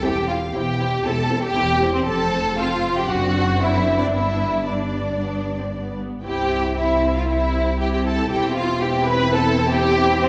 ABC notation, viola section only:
X:1
M:4/4
L:1/16
Q:1/4=117
K:C
V:1 name="Viola section"
[CE]2 [CE]2 [CE]2 [CE]2 [CE]2 [CE]2 [CE]2 [CE]2 | C4 C4 [CD]8 | [B,D]4 D4 B,3 C B,4 | [CE]4 [CE]4 [CE]4 [CE]4 |
[CE]4 [CE]12 |]